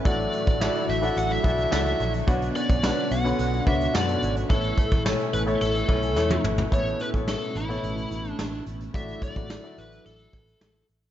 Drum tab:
HH |xxxx-xxxxxxx-xxx|xxxx-xxxxxxx-xxx|xxxx-xxxxxxx----|xxxx-xxxxxxx-xxx|
TB |----x-------x---|----x-------x---|----x-----------|----------------|
SD |----o-------o---|----o-------o---|----o-------o---|----o-------o---|
T1 |----------------|----------------|-------------o--|----------------|
T2 |----------------|----------------|--------------o-|----------------|
FT |----------------|----------------|---------------o|----------------|
BD |o--o------o-----|o--o------o-----|o-oo------o-----|o--o------------|

HH |xxxx-xxxxxxx-xx-|
TB |----------------|
SD |----o-------o---|
T1 |----------------|
T2 |----------------|
FT |----------------|
BD |o-oo------o-----|